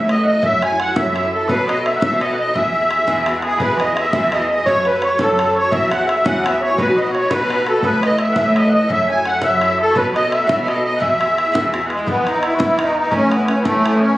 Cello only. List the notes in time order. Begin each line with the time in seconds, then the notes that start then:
Already playing: A2
0.43 F#2
0.96 F#2
1.48 B2
2.01 B2
2.54 E2
3.06 E2
3.59 E2
4.13 E2
4.65 F#2
5.19 F#2
5.72 E2
6.25 E2
6.78 B2
7.30 B2
7.83 A2
8.36 A2
8.89 F#2
9.42 F#2
9.95 B2
10.48 B2
11.01 E2
11.54 E2
12.06 E2
12.59 E2
13.11 A2
13.63 A2